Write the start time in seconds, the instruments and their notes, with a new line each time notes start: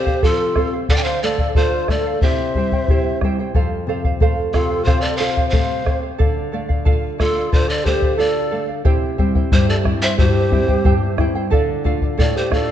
Already playing: nylon-string guitar C3 C4, quena G4, pan flute C5
0.06 charango C5 F5, bombo low
0.23 nylon-string guitar F3, quena F4, charango A4 C5 F5, pan flute A4, bombo low
0.56 nylon-string guitar C4, charango A4 C5 F5, bombo rim, bombo low
0.73 charango C5 F5
0.89 nylon-string guitar D3, charango A4 D5 F5, quena D5, pan flute F5, bombo low
0.96 quena D5, pan flute G5
1.04 quena C5, pan flute F5
1.23 nylon-string guitar A3, charango A4 D5 F5, quena A4, pan flute D5
1.38 charango D5 F5, bombo low
1.55 quena F4, charango A4 D5 F5, nylon-string guitar A4, pan flute C5, bombo low
1.88 nylon-string guitar A3, quena A4, charango A4 D5 F5, pan flute D5, bombo rim, bombo low
2.07 charango D5 F5
2.22 nylon-string guitar C3, charango E4 G4 C5 E5 G5, quena C5, pan flute E5, bombo low
2.55 nylon-string guitar G3, charango E4 C5 E5 G5, bombo low
2.72 charango E4 C5 G5, bombo low
2.88 charango E4 G4 C5 E5 G5, nylon-string guitar G4, bombo low
3.21 nylon-string guitar G3, charango E4 C5 E5 G5, bombo rim, bombo low
3.39 charango E4 C5 G5
3.54 nylon-string guitar F2, charango A4 C5 F5, bombo low
3.87 nylon-string guitar C3, charango A4 C5 F5
4.04 charango C5 F5, bombo low
4.20 nylon-string guitar A3, charango A4 C5 F5, bombo low
4.53 nylon-string guitar C3, quena F4, pan flute A4, charango A4 C5 F5, bombo rim, bombo low
4.70 charango C5 F5
4.84 nylon-string guitar C3, quena F4, charango A4 C5 F5, pan flute C5, bombo low
5.01 quena A4, pan flute D5
5.17 nylon-string guitar F4, charango A4 C5, quena C5, pan flute F5
5.21 charango F5
5.36 charango C5 F5, bombo low
5.49 nylon-string guitar A3, charango A4 F5, quena C5, pan flute F5, bombo low
5.53 charango C5
5.86 nylon-string guitar C3, charango A4 C5 F5, bombo rim, bombo low
6.03 charango C5 F5
6.18 nylon-string guitar D3, charango A4 D5 F5, bombo low
6.52 nylon-string guitar A3, charango A4 D5 F5
6.69 charango D5 F5, bombo low
6.85 nylon-string guitar F4, charango A4 D5 F5, bombo low
7.18 nylon-string guitar A3, quena F4, charango A4 D5 F5, pan flute A4, bombo rim, bombo low
7.35 charango D5 F5
7.52 nylon-string guitar D3, quena F4, charango A4 D5 F5, pan flute C5, bombo low
7.68 quena A4, pan flute D5
7.84 nylon-string guitar A3, quena G4, charango A4 D5 F5, pan flute C5, bombo low
8.02 charango D5 F5, bombo low
8.17 nylon-string guitar F4, quena A4, charango A4 D5 F5, pan flute D5
8.51 nylon-string guitar A3, charango A4 D5 F5
8.68 charango D5 F5
8.85 nylon-string guitar C3, charango E4 G4 C5 E5 G5, bombo low
9.18 nylon-string guitar G3 C4 E4, charango E4 C5 E5 G5, bombo low
9.35 charango E4 C5 G5, bombo low
9.52 nylon-string guitar G2, charango E4 G4 C5 E5 G5, quena G4, pan flute C5, bombo low
9.68 quena A4, pan flute D5
9.84 nylon-string guitar G3 C4 E4, charango E4 C5 E5 G5, bombo rim, bombo low
10.02 charango E4 C5 G5, quena C5, pan flute E5
10.18 nylon-string guitar G2, charango E4 G4 C5 E5 G5, quena G4, pan flute C5, bombo low
10.50 nylon-string guitar G3 C4 E4, charango E4 C5 E5 G5, bombo low
10.68 charango E4 C5 G5, bombo low
10.84 nylon-string guitar G2, charango E4 G4 C5 E5 G5, bombo low
11.18 nylon-string guitar G3 C4 E4, charango E4 C5 E5 G5, bombo rim, bombo low
11.35 charango E4 C5 G5
11.50 nylon-string guitar D3, charango A4 D5 F5, bombo low
11.84 nylon-string guitar A3 D4 F4, charango A4 D5 F5, bombo low
12.02 charango D5 F5, bombo low
12.18 nylon-string guitar A2, charango A4 D5 F5, quena A4, pan flute D5, bombo low
12.36 quena G4, pan flute C5
12.50 nylon-string guitar A3 D4 F4, charango A4 D5 F5, quena A4, pan flute D5, bombo rim, bombo low
12.68 charango F5